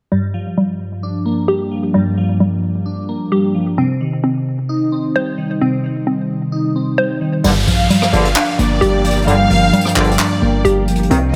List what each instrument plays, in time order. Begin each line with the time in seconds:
0.12 synth keys G2, synth pluck G3
0.34 synth keys F3
0.57 synth pluck G3
1.03 synth keys D4
1.26 synth keys A#3
1.48 synth keys G3, synth pluck G4
1.71 synth keys F3
1.94 synth keys G2, synth pluck G3
2.17 synth keys F3
2.40 synth pluck G3
2.86 synth keys D4
3.09 synth keys A#3
3.32 synth keys G3, synth pluck G4
3.55 synth keys F3
3.78 synth keys C3, synth pluck C4
4.01 synth keys D#3
4.24 synth pluck C4
4.69 synth keys D#4
4.92 synth keys C4
5.16 synth keys G3, synth pluck C5
5.38 synth keys D#3
5.61 synth keys C3, synth pluck C4
5.84 synth keys D#3
6.07 synth pluck C4
6.52 synth keys D#4
6.76 synth keys C4
6.98 synth keys G3, synth pluck C5
7.21 synth keys D#3
7.44 808-style bass G1, brass ensemble A#1 G2 D3, synth keys G2, synth pluck G3, ambient pad D4 A#4 F5 G5, crash, downlifter
7.67 808-style bass A#1, synth keys F3, violin section F5, closed hi-hat
7.90 synth pluck G3, closed hi-hat
8.02 cross-stick
8.13 808-style bass G1, brass ensemble A#1 G2 D3, closed hi-hat
8.25 closed hi-hat
8.36 synth keys D4, clap, closed hi-hat
8.59 808-style bass G1, synth keys A#3, violin section D5, closed hi-hat
8.81 808-style bass G1, synth keys G3, synth pluck G4, closed hi-hat
9.04 synth keys F3, closed hi-hat
9.11 closed hi-hat
9.17 closed hi-hat
9.22 closed hi-hat
9.27 brass ensemble A#1 G2 D3, synth keys G2, synth pluck G3, violin section F5, closed hi-hat
9.50 808-style bass G1, synth keys F3, open hi-hat
9.73 synth pluck G3, closed hi-hat
9.81 closed hi-hat
9.85 cross-stick, closed hi-hat
9.96 808-style bass G1, brass ensemble A#1 G2 D3, violin section D5, clap
10.04 closed hi-hat
10.11 closed hi-hat
10.18 synth keys D4, clap, closed hi-hat
10.42 808-style bass G1, synth keys A#3
10.65 808-style bass G1, synth keys G3, synth pluck G4, closed hi-hat
10.87 synth keys F3, closed hi-hat
10.95 closed hi-hat
11.03 closed hi-hat
11.10 brass ensemble C2 G2 D#3, 808-style bass C2, synth keys C3, ambient pad C4 G4 D#5 G5, synth pluck C4, closed hi-hat